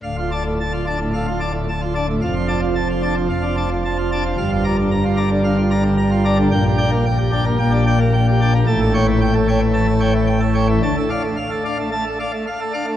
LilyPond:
<<
  \new Staff \with { instrumentName = "Pipe organ" } { \time 4/4 \key d \minor \tempo 4 = 111 f''16 f'16 <d'' a''>16 a,16 a''16 f'16 <d'' a''>16 a,16 f''16 f'16 <d'' a''>16 a,16 a''16 f'16 <d'' a''>16 a,16 | f''16 f'16 <d'' a''>16 f16 a''16 f'16 <d'' a''>16 f16 f''16 f'16 <d'' a''>16 f16 a''16 f'16 <d'' a''>16 f16 | f''16 f'16 <d'' bes''>16 d16 bes''16 f'16 <d'' bes''>16 d16 f''16 f'16 <d'' bes''>16 d16 bes''16 f'16 <d'' bes''>16 d16 | g''16 g'16 <d'' g''>16 bes16 g''16 g'16 <d'' g''>16 bes16 g''16 g'16 <d'' g''>16 bes16 g''16 g'16 <d'' g''>16 bes16 |
a''16 a'16 <cis'' g''>16 e16 g''16 a'16 <cis'' g''>16 e16 a''16 a'16 <cis'' g''>16 e16 g''16 a'16 <cis'' g''>16 e16 | a''16 a'16 <d'' f''>16 a16 f''16 a'16 <d'' f''>16 a16 a''16 a'16 <d'' f''>16 a16 f''16 a'16 <d'' f''>16 a16 | }
  \new Staff \with { instrumentName = "Pipe organ" } { \clef bass \time 4/4 \key d \minor << { d,4. d'16 r16 a,16 r4 r16 d'16 r16 | f,4. d'16 r16 f,16 d'16 r4 d'16 r16 | g,4. d'16 r16 d16 r4 r16 d'16 r16 | bes,4. d'16 r16 bes,16 d'16 r4 d'16 r16 |
a,2 e16 r4. r16 | d16 r4 r16 d'16 r16 a16 r4 r16 d'16 r16 | } \\ { d,,1 | f,,2 f,,2 | g,,1 | bes,,2 bes,,2 |
a,,1 | d,16 r2. r8. | } >> }
>>